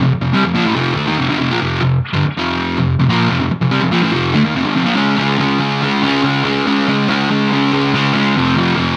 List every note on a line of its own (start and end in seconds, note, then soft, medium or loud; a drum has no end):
0.01 0.11 F2 medium
0.01 0.11 C3 medium
0.12 muted distorted electric guitar stroke medium
0.21 0.32 F2 medium
0.21 0.32 C3 medium
0.33 0.43 C3 medium
0.33 0.43 G3 loud
0.44 0.54 F2 medium
0.44 0.54 C3 medium
0.55 0.64 A#2 medium
0.55 0.64 F3 loud
0.65 0.75 A2 medium
0.65 0.75 E3 medium
0.75 0.95 F2 loud
0.75 0.94 C3 loud
0.75 0.96 F3 loud
0.94 1.05 D3 loud
0.94 1.06 A3 loud
1.07 1.17 D#3 medium
1.07 1.17 A#3 loud
1.17 1.27 F2 medium
1.17 1.28 C3 loud
1.29 1.37 G2 medium
1.29 1.38 D3 loud
1.38 1.48 F2 medium
1.38 1.49 C3 loud
1.50 1.59 A#2 loud
1.50 1.60 F3 loud
1.61 1.80 F2 medium
1.61 1.80 C3 loud
1.61 1.81 F3 loud
1.81 1.97 F2 medium
1.81 1.98 C3 medium
2.13 2.23 G2 medium
2.13 2.23 D3 medium
2.26 muted distorted electric guitar stroke medium
2.37 2.76 F2 medium
2.37 2.77 C3 medium
2.37 2.78 F3 loud
2.77 2.94 F2 medium
2.77 2.94 C3 medium
2.99 3.09 F2 medium
2.99 3.09 C3 medium
3.09 3.29 A#2 medium
3.09 3.29 F3 medium
3.09 3.29 A#3 loud
3.29 3.38 F2 medium
3.29 3.38 C3 medium
3.39 3.50 F2 medium
3.39 3.50 C3 medium
3.51 muted distorted electric guitar stroke medium
3.61 3.71 F2 medium
3.61 3.69 C3 medium
3.70 3.80 C3 loud
3.70 3.81 G3 loud
3.81 3.92 F2 medium
3.81 3.91 C3 medium
3.91 4.01 A#2 medium
3.91 4.02 F3 loud
4.02 4.12 A2 medium
4.02 4.12 E3 medium
4.11 4.33 F2 loud
4.11 4.33 C3 loud
4.11 4.33 F3 loud
4.34 4.44 D3 medium
4.34 4.45 A3 loud
4.45 4.55 D#3 loud
4.45 4.55 A#3 loud
4.55 4.65 F2 medium
4.55 4.65 C3 loud
4.65 4.76 G2 medium
4.65 4.76 D3 loud
4.76 4.86 F2 medium
4.76 4.85 C3 loud
4.85 4.96 A#2 medium
4.85 4.96 F3 loud
4.96 5.17 C#3 loud
4.96 5.18 G#3 loud
4.96 5.19 C#4 loud
5.17 5.38 C#3 medium
5.17 5.38 G#3 medium
5.17 5.40 C#4 medium
5.38 5.59 C#3 medium
5.38 5.59 G#3 medium
5.38 5.59 C#4 medium
5.59 5.80 C#3 loud
5.59 5.81 G#3 loud
5.59 5.82 C#4 loud
5.81 6.01 C#3 medium
5.81 6.02 G#3 loud
5.81 6.02 C#4 loud
6.02 6.22 C#3 medium
6.02 6.23 G#3 medium
6.02 6.23 C#4 loud
6.23 6.42 C#3 medium
6.23 6.43 G#3 medium
6.23 6.44 C#4 loud
6.43 6.65 C#3 medium
6.43 6.65 G#3 medium
6.43 6.66 C#4 medium
6.66 6.87 C#3 medium
6.66 6.87 G#3 loud
6.66 6.88 C#4 loud
6.88 7.07 C#3 medium
6.88 7.08 G#3 loud
6.88 7.09 C#4 medium
7.08 7.29 C#3 medium
7.08 7.29 G#3 loud
7.08 7.30 C#4 loud
7.30 7.50 C#3 loud
7.30 7.52 G#3 loud
7.30 7.52 C#4 loud
7.52 7.71 C#3 medium
7.52 7.71 G#3 medium
7.52 7.72 C#4 loud
7.73 7.92 C#3 medium
7.73 7.92 G#3 medium
7.73 7.93 C#4 loud
7.93 8.12 C#3 loud
7.93 8.13 G#3 loud
7.93 8.13 C#4 loud
8.13 8.33 C#3 medium
8.13 8.34 G#3 medium
8.13 8.34 C#4 medium
8.36 8.54 F2 loud
8.36 8.56 C3 loud
8.36 8.56 F3 loud
8.55 8.75 F2 medium
8.55 8.75 C3 loud
8.55 8.76 F3 medium
8.76 8.97 F2 medium
8.76 8.97 C3 loud
8.76 8.97 F3 loud